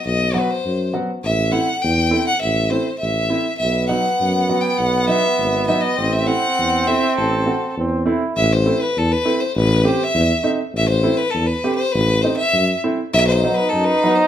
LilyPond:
<<
  \new Staff \with { instrumentName = "Violin" } { \time 2/4 \tempo 4 = 101 dis''8 b'16 c''8. r8 | e''8 fis''8 g''8. fis''16 | e''8 c''8 e''4 | e''8 fis''4~ fis''16 g''16 |
fis''8 e''4 e''16 dis''16~ | dis''16 e''16 fis''4 e''8 | a'4 r4 | e''16 c''8 b'16 a'16 b'8 c''16 |
b'8 c''16 e''8. r8 | e''16 c''8 b'16 a'16 b'8 c''16 | b'8 c''16 e''8. r8 | e''16 c''8 b'16 a'16 b'8 c''16 | }
  \new Staff \with { instrumentName = "Trombone" } { \time 2/4 r2 | r2 | r2 | b2~ |
b2 | c'2~ | c'4 c'8 e'8 | r2 |
r2 | r2 | r2 | dis'2 | }
  \new Staff \with { instrumentName = "Upright piano" } { \time 2/4 r8 <fis b fis'>16 r8. <fis b fis'>16 r16 | r8 <a c' e'>16 r8. <a c' e'>16 r16 | r8 <a c' e'>16 r8. <a c' e'>16 r16 | r8 <fis b dis'>16 r8. <fis b fis'>16 r16 |
r8 <fis b dis'>16 r8. <fis b dis'>16 r16 | r8 <a c' e'>16 r8. <a c' e'>16 r16 | r8 <a c' fis'>16 r8. <a c' e'>16 r16 | r8 <a c' e'>16 r8. <a c' e'>16 r16 |
r8 <a c' g'>16 r8. <a c' dis'>16 r16 | r8 <a c' e'>16 r8. <a c' g'>16 r16 | r8 <a c' dis'>16 r8. <a c' e'>16 r16 | r8 <fis b dis'>16 r8. <fis b dis'>16 r16 | }
  \new Staff \with { instrumentName = "Tuba" } { \clef bass \time 2/4 b,,4 fis,4 | a,,4 e,4 | a,,4 a,,4 | b,,4 fis,4 |
b,,4 gis,,4 | a,,4 e,4 | a,,4 e,4 | a,,4 e,8 r8 |
a,,4 e,8 r8 | a,,4 e,8 r8 | a,,4 fis,8 r8 | b,,4 fis,8 r8 | }
>>